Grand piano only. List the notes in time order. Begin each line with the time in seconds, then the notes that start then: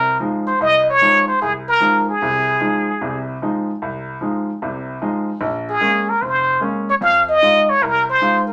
Already playing: C2 C3
0.20 F3 G#3 D#4
0.61 C2
1.01 F3 G#3 D#4
1.42 C2
1.80 F3 G#3 D#4
2.22 C2 C3
2.60 F3 G#3 D#4
3.01 C2 C3
3.42 F3 G#3 D#4
3.82 C2
4.21 F3 G#3 D#4
4.62 C2 C3
5.02 F3 G#3 D#4
5.41 A#1
5.81 G#3 A#3 C#4
6.22 F1
6.61 G#3 A#3 C#4
7.01 F2
7.42 G#3 D#4 F4
7.82 C2
8.21 G#3 D#4 F4